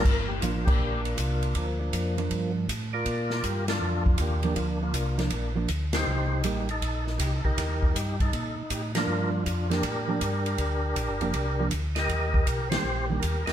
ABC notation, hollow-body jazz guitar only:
X:1
M:4/4
L:1/8
Q:"Swing" 1/4=159
K:Gm
V:1 name="Hollow-body jazz guitar"
z2 [F,B,D] z4 z | z3 [F,B,D]3 z2 | z6 z [F,B,D]- | [F,B,D]2 z [F,B,D] z [F,B,D] z2 |
z2 [G,B,E] z4 z | z6 z [F,B,D]- | [F,B,D]2 z [F,B,D] z [F,B,D] z2 | z3 [F,B,D] z [F,B,D] z2 |
z3 [E,G,B,D] z [E,G,B,D] z2 |]